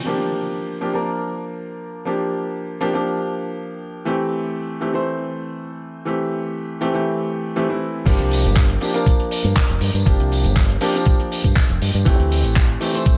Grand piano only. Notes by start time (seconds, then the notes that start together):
0.05 F3 A#3 D4 G4
0.81 F3 A#3 D4 G4
0.93 F3 A#3 D4 A#4
2.05 F3 A#3 D4 G4
2.81 F3 A#3 D4 G4
2.93 F3 A#3 D4 G4
4.05 E3 A3 C4 G4
4.81 E3 A3 C4 G4
4.93 E3 A3 C4 C5
6.05 E3 A3 C4 G4
6.81 E3 A3 C4 G4
6.93 E3 A3 C4 G4
7.56 E3 A3 C4 G4
7.69 E3 A3 C4 E4
8.05 F3 A#3 D4 G4
8.81 F3 A#3 D4 G4
8.94 F3 A#3 D4 A#4
10.05 F3 A#3 D4 G4
10.81 F3 A#3 D4 G4
10.94 F3 A#3 D4 G4
12.05 E3 A3 C4 G4
12.80 E3 A3 C4 G4
12.93 E3 A3 C4 C5